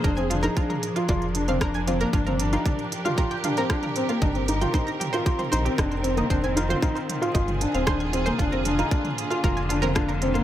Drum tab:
HH |xxxxxxxxxxxxxxxx|xxxxxxxxxxxxxxxx|xxxxxxxxxxxxxxxx|xxxxxxxxxxxxxxxx|
SD |------------r---|------------r---|------------r---|------------r---|
T2 |--o--o--o--o--o-|-o--o--o--o--o--|o--o--o--o--o--o|o--o--o--o--o--o|
BD |o---o---o---o---|o---o---o---o---|o---o---o---o---|o---o---o---o---|

HH |xxxxxxxxxxxxxxxx|
SD |------------r---|
T2 |--o--o--o--o--o-|
BD |o---o---o---o---|